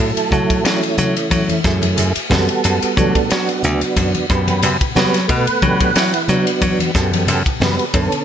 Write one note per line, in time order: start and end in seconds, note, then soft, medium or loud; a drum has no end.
0.00 0.15 A2 medium
0.00 0.92 F#3 medium
0.00 0.31 A3 medium
0.00 0.31 E4 medium
0.00 0.31 A4 medium
0.16 muted slap bass stroke soft
0.16 ride medium
0.31 0.61 F#3 medium
0.31 0.64 A3 medium
0.31 0.64 E4 medium
0.31 0.64 F#4 medium
0.31 0.64 A4 medium
0.31 kick medium
0.31 hi-hat pedal medium
0.31 low conga medium
0.50 kick medium
0.50 ride medium
0.65 0.97 E3 medium
0.65 0.81 F#3 medium
0.65 0.97 A3 medium
0.65 0.98 C#4 medium
0.65 0.97 E4 medium
0.65 snare medium
0.65 hi-hat pedal medium
0.65 ride medium
0.83 ride medium
0.98 1.61 E3 medium
0.98 1.14 F#3 medium
0.98 1.61 A3 medium
0.98 1.61 C#4 medium
0.98 1.61 E4 medium
0.98 hi-hat pedal medium
0.98 low conga medium
1.17 ride medium
1.30 1.47 F#3 medium
1.30 kick medium
1.30 hi-hat pedal medium
1.30 ride medium
1.30 high conga medium
1.49 muted slap bass stroke soft
1.49 ride medium
1.49 high conga medium
1.64 1.94 F#2 medium
1.64 2.12 F#3 medium
1.64 2.12 A3 medium
1.64 2.12 E4 medium
1.64 2.13 G#4 medium
1.64 kick medium
1.64 snare soft
1.64 hi-hat pedal medium
1.82 ride medium
1.82 high conga medium
1.97 2.14 F#2 medium
1.97 hi-hat pedal medium
1.97 ride medium
1.97 low conga medium
2.16 muted slap bass stroke soft
2.16 ride medium
2.29 2.47 F#2 medium
2.29 3.37 G3 medium
2.29 3.31 B3 medium
2.29 2.97 F#4 medium
2.29 2.96 A4 loud
2.29 kick loud
2.29 snare loud
2.29 hi-hat pedal medium
2.29 high conga medium
2.29 low conga medium
2.49 ride medium
2.64 2.80 F#2 loud
2.64 hi-hat pedal medium
2.64 ride medium
2.82 muted slap bass stroke soft
2.82 ride medium
2.97 3.13 F#3 medium
2.97 3.30 A3 medium
2.97 3.30 D4 medium
2.97 3.30 F#4 medium
2.97 3.30 A4 medium
2.97 kick medium
2.97 hi-hat pedal medium
2.97 high conga medium
2.97 low conga medium
3.15 kick medium
3.15 ride medium
3.30 3.47 F#3 medium
3.30 3.63 F#3 medium
3.30 3.63 B3 medium
3.30 3.63 D4 medium
3.30 3.63 F#4 medium
3.30 snare loud
3.30 hi-hat pedal medium
3.30 ride medium
3.49 ride medium
3.63 3.80 D2 medium
3.63 4.26 F#3 medium
3.63 4.26 B3 medium
3.63 4.26 D4 medium
3.63 4.26 F#4 medium
3.63 hi-hat pedal medium
3.63 low conga medium
3.81 muted slap bass stroke soft
3.81 ride medium
3.96 4.12 F#2 medium
3.96 kick medium
3.96 hi-hat pedal medium
3.96 ride medium
3.96 high conga medium
4.15 ride medium
4.15 high conga medium
4.29 4.59 F#2 medium
4.29 4.77 B3 medium
4.29 4.77 F#4 medium
4.29 4.77 G4 medium
4.29 4.78 B4 medium
4.29 kick medium
4.29 hi-hat pedal medium
4.48 ride medium
4.48 high conga medium
4.63 4.79 F#2 medium
4.63 hi-hat pedal medium
4.63 ride medium
4.63 low conga medium
4.81 muted slap bass stroke soft
4.81 kick medium
4.81 ride medium
4.95 5.25 F#3 medium
4.95 5.20 G3 medium
4.95 5.20 B3 medium
4.95 5.20 F#4 medium
4.95 5.20 B4 medium
4.95 snare loud
4.95 hi-hat pedal medium
4.95 high conga medium
4.95 low conga medium
5.14 snare soft
5.14 ride medium
5.28 5.45 B2 medium
5.28 5.62 A3 medium
5.28 5.62 B3 medium
5.28 6.22 B4 medium
5.28 6.22 F#5 medium
5.28 kick loud
5.28 hi-hat pedal medium
5.28 ride medium
5.47 muted slap bass stroke soft
5.47 ride medium
5.62 5.92 F#3 medium
5.62 5.95 A3 medium
5.62 5.95 B3 medium
5.62 5.95 D4 medium
5.62 5.95 G4 medium
5.62 kick medium
5.62 hi-hat pedal medium
5.62 high conga medium
5.62 low conga medium
5.81 kick medium
5.81 ride medium
5.96 6.29 E3 medium
5.96 6.12 F#3 medium
5.96 6.28 E4 medium
5.96 snare medium
5.96 hi-hat pedal medium
5.96 ride medium
6.14 ride medium
6.28 6.45 F#3 medium
6.28 6.91 F#3 medium
6.28 6.91 B3 medium
6.28 6.91 D4 medium
6.28 6.91 F#4 medium
6.28 hi-hat pedal medium
6.28 low conga medium
6.47 ride medium
6.61 6.78 F#3 medium
6.61 kick medium
6.61 hi-hat pedal medium
6.61 ride medium
6.61 high conga medium
6.79 muted slap bass stroke soft
6.79 ride medium
6.79 high conga medium
6.95 7.24 F#2 medium
6.95 7.42 B3 medium
6.95 7.43 F#4 medium
6.95 7.42 G4 medium
6.95 7.43 A4 medium
6.95 kick medium
6.95 snare soft
6.95 hi-hat pedal medium
7.12 ride medium
7.12 high conga medium
7.27 7.44 F#2 medium
7.27 hi-hat pedal medium
7.27 ride medium
7.27 low conga medium
7.46 kick medium
7.46 ride medium
7.60 7.77 F#2 medium
7.60 7.85 G3 medium
7.60 7.85 B3 medium
7.60 7.85 F#4 medium
7.60 7.86 B4 medium
7.60 snare loud
7.60 hi-hat pedal medium
7.60 high conga medium
7.60 low conga medium
7.79 ride medium
7.94 8.10 F#2 medium
7.94 8.24 D3 medium
7.94 8.24 B3 medium
7.94 8.24 C#4 medium
7.94 8.24 A4 medium
7.94 kick loud
7.94 hi-hat pedal medium
7.94 ride medium
8.12 muted slap bass stroke soft
8.12 ride medium